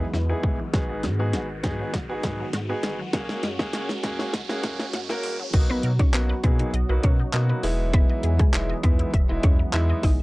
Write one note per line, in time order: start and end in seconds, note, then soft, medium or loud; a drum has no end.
0.00 0.12 E3 medium
0.00 0.71 E3 medium
0.00 0.70 F#3 medium
0.00 5.50 G#3 medium
0.00 3.10 B3 medium
0.00 riser medium
0.13 0.33 E2 loud
0.13 0.27 E4 medium
0.13 snare medium
0.29 0.55 B3 medium
0.29 0.55 D#4 medium
0.29 0.42 D#4 medium
0.29 0.55 E4 medium
0.29 0.55 G#4 medium
0.43 0.63 A1 medium
0.43 0.57 G#3 medium
0.43 kick medium
0.59 0.72 E3 medium
0.73 1.05 G#1 loud
0.73 3.11 D#3 medium
0.73 1.00 B3 medium
0.73 1.00 D#4 medium
0.73 1.00 F#4 medium
0.73 0.87 F#4 loud
0.73 5.50 F#4 medium
0.73 1.00 G#4 medium
0.73 kick loud
0.73 snare medium
0.73 closed hi-hat medium
0.89 1.02 B3 medium
1.03 1.35 G#2 loud
1.03 1.17 G#3 medium
1.03 snare medium
1.03 closed hi-hat medium
1.19 1.32 F#3 medium
1.19 1.45 B3 medium
1.19 1.45 D#4 medium
1.19 1.45 F#4 medium
1.19 1.45 G#4 medium
1.33 1.65 G#1 loud
1.33 1.47 F#4 medium
1.33 snare medium
1.33 closed hi-hat loud
1.63 1.83 G#2 loud
1.63 1.77 G#3 medium
1.63 1.90 B3 medium
1.63 1.90 D#4 medium
1.63 1.90 F#4 medium
1.63 1.90 G#4 loud
1.63 kick medium
1.63 snare medium
1.63 closed hi-hat medium
1.79 1.92 F#3 medium
1.94 2.04 G#1 loud
1.94 2.07 F#4 loud
1.94 kick medium
1.94 snare medium
1.94 closed hi-hat medium
2.09 2.19 G#1 loud
2.09 2.44 B3 medium
2.09 2.22 B3 medium
2.09 2.44 D#4 medium
2.09 2.44 F#4 medium
2.09 2.44 G#4 loud
2.23 2.43 G#2 loud
2.23 2.37 G#3 medium
2.23 kick loud
2.23 snare loud
2.23 closed hi-hat medium
2.39 2.51 F#3 medium
2.53 2.73 G#2 loud
2.53 2.67 F#4 medium
2.53 snare medium
2.53 closed hi-hat loud
2.69 2.95 B3 medium
2.69 2.82 B3 medium
2.69 2.95 D#4 medium
2.69 2.95 F#4 medium
2.69 2.95 G#4 loud
2.83 3.03 G1 loud
2.83 2.97 G#3 medium
2.83 snare loud
2.83 closed hi-hat medium
2.99 3.11 F#3 medium
3.13 3.33 F#1 loud
3.13 3.40 A#3 medium
3.13 5.51 A#3 medium
3.13 3.40 C#4 medium
3.13 5.51 C#4 medium
3.13 3.27 F#4 loud
3.13 3.40 F#4 medium
3.13 3.40 G#4 loud
3.13 kick loud
3.13 snare loud
3.13 closed hi-hat medium
3.29 3.42 A#3 medium
3.29 snare loud
3.43 3.63 F#2 loud
3.43 3.57 G#3 medium
3.43 snare loud
3.43 closed hi-hat medium
3.59 3.71 F#3 medium
3.59 3.85 A#3 medium
3.59 3.85 C#4 medium
3.59 3.85 F#4 medium
3.59 3.85 G#4 loud
3.59 kick loud
3.59 snare loud
3.73 3.93 F#1 loud
3.73 3.87 F#4 medium
3.73 snare loud
3.73 closed hi-hat loud
3.89 snare loud
4.03 4.23 F#2 loud
4.03 4.17 G#3 medium
4.03 4.30 A#3 medium
4.03 4.30 C#4 medium
4.03 4.30 F#4 medium
4.03 4.30 G#4 loud
4.03 kick medium
4.03 snare loud
4.03 closed hi-hat medium
4.19 4.31 F#3 medium
4.19 snare loud
4.33 4.44 F#1 loud
4.33 4.47 F#4 loud
4.33 kick medium
4.33 snare loud
4.33 closed hi-hat medium
4.49 4.59 F#1 loud
4.49 4.84 A#3 medium
4.49 4.62 A#3 medium
4.49 4.84 C#4 medium
4.49 4.84 F#4 medium
4.49 4.84 G#4 loud
4.49 snare loud
4.63 4.83 F#2 loud
4.63 4.77 G#3 medium
4.63 kick loud
4.63 snare loud
4.63 closed hi-hat medium
4.79 4.92 F#3 medium
4.79 snare loud
4.93 5.13 F#2 loud
4.93 5.07 F#4 medium
4.93 snare loud
4.93 closed hi-hat loud
5.09 5.35 A#3 medium
5.09 5.22 A#3 medium
5.09 5.35 C#4 medium
5.09 5.35 F#4 medium
5.09 5.35 A#4 loud
5.09 snare loud
5.23 5.43 C2 loud
5.23 5.37 G#3 medium
5.23 open hi-hat medium
5.39 5.52 F#3 medium
5.53 5.73 B1 loud
5.53 7.61 B2 medium
5.53 5.89 F#3 medium
5.53 10.23 F#3 medium
5.53 5.89 A#3 medium
5.53 5.89 B3 medium
5.53 5.89 D#4 medium
5.53 7.62 F#4 medium
5.53 5.89 F#4 medium
5.53 5.67 D#5 loud
5.53 kick loud
5.53 closed hi-hat loud
5.53 crash loud
5.69 5.82 B3 medium
5.69 5.82 B4 medium
5.83 6.03 B2 loud
5.83 5.97 A#4 medium
5.83 closed hi-hat medium
5.99 6.12 C#4 medium
5.99 6.12 D#4 medium
5.99 6.11 C#5 medium
5.99 kick medium
5.99 closed hi-hat medium
6.13 6.33 B1 loud
6.13 6.32 F#3 medium
6.13 6.32 A#3 medium
6.13 6.32 B3 medium
6.13 6.39 B3 medium
6.13 6.32 D#4 medium
6.13 6.32 F#4 medium
6.13 6.39 B4 medium
6.13 clap loud
6.13 closed hi-hat loud
6.29 6.42 B4 medium
6.43 6.63 B2 loud
6.43 6.70 F#3 medium
6.43 6.70 A#3 medium
6.43 6.70 B3 medium
6.43 6.58 B3 medium
6.43 6.70 D#4 medium
6.43 6.70 G#4 medium
6.43 6.57 A#4 medium
6.43 6.57 B4 medium
6.43 kick medium
6.43 closed hi-hat medium
6.59 6.72 D#4 medium
6.59 closed hi-hat medium
6.73 6.84 B1 loud
6.73 6.87 D#5 loud
6.73 closed hi-hat medium
6.89 6.99 B1 loud
6.89 7.15 F#3 medium
6.89 7.15 A#3 medium
6.89 7.15 B3 medium
6.89 7.15 D#4 medium
6.89 7.15 F#4 medium
6.89 7.01 B4 medium
7.03 7.23 B2 loud
7.03 7.29 C#4 medium
7.03 7.17 A#4 medium
7.03 7.29 C#5 medium
7.03 kick loud
7.03 closed hi-hat medium
7.19 7.32 D#4 medium
7.33 7.53 B2 loud
7.33 7.63 F#3 medium
7.33 7.63 A#3 medium
7.33 7.62 B3 medium
7.33 7.62 D#4 medium
7.33 7.64 F#4 medium
7.33 7.47 D#5 medium
7.33 clap loud
7.33 closed hi-hat loud
7.49 7.62 B4 medium
7.63 8.03 E1 loud
7.63 8.36 E3 loud
7.63 10.23 E3 medium
7.63 8.36 G#3 medium
7.63 10.23 G#3 medium
7.63 8.36 B3 medium
7.63 10.23 B3 medium
7.63 8.36 D#4 medium
7.63 8.36 E4 loud
7.63 7.77 G#4 medium
7.63 open hi-hat medium
7.93 8.19 B3 medium
7.93 8.19 B4 loud
7.93 8.07 E5 loud
7.93 kick loud
7.93 closed hi-hat medium
8.09 8.22 D#5 medium
8.23 8.43 E2 loud
8.23 8.37 G#4 medium
8.23 closed hi-hat medium
8.39 8.52 G#3 medium
8.39 8.52 E4 medium
8.39 8.51 G#4 medium
8.39 kick loud
8.39 closed hi-hat medium
8.53 8.73 E1 loud
8.53 8.72 E3 medium
8.53 8.72 G#3 medium
8.53 8.72 B3 medium
8.53 8.72 D#4 medium
8.53 8.72 E4 medium
8.53 clap loud
8.53 closed hi-hat loud
8.69 8.82 D#5 medium
8.83 9.03 E2 loud
8.83 9.10 E3 medium
8.83 9.10 G#3 medium
8.83 9.10 B3 medium
8.83 9.27 B3 medium
8.83 9.10 D#4 medium
8.83 9.10 E4 medium
8.83 8.97 G#4 medium
8.83 9.27 B4 medium
8.83 kick medium
8.83 closed hi-hat medium
8.99 9.12 E4 medium
8.99 closed hi-hat medium
9.14 9.24 E1 loud
9.14 9.27 E5 loud
9.14 kick medium
9.14 closed hi-hat medium
9.29 9.39 E1 loud
9.29 9.55 E3 medium
9.29 9.55 G#3 medium
9.29 9.55 B3 medium
9.29 9.55 D#4 medium
9.29 9.55 E4 medium
9.29 9.42 D#5 medium
9.43 9.63 E2 loud
9.43 9.57 C#4 medium
9.43 9.57 G#4 medium
9.43 9.57 C#5 medium
9.43 kick loud
9.43 closed hi-hat medium
9.59 9.72 E4 medium
9.73 9.93 E2 loud
9.73 10.08 E3 medium
9.73 10.08 G#3 medium
9.73 10.09 B3 medium
9.73 10.09 D#4 medium
9.73 10.09 E4 loud
9.73 9.87 E5 medium
9.73 clap loud
9.73 closed hi-hat loud
9.90 10.02 D#5 medium
10.03 10.23 A1 medium
10.03 10.17 D#4 medium
10.03 10.17 G#4 medium
10.03 10.17 D#5 medium
10.03 kick loud
10.03 open hi-hat medium